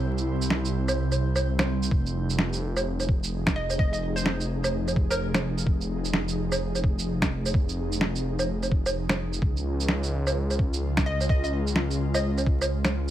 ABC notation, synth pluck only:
X:1
M:4/4
L:1/16
Q:"Swing 16ths" 1/4=128
K:Fm
V:1 name="Synth pluck"
z16 | z12 z2 e2 | e e z c2 z6 B3 z2 | z16 |
z16 | z12 z2 e2 | e e z4 z e4 z4 z |]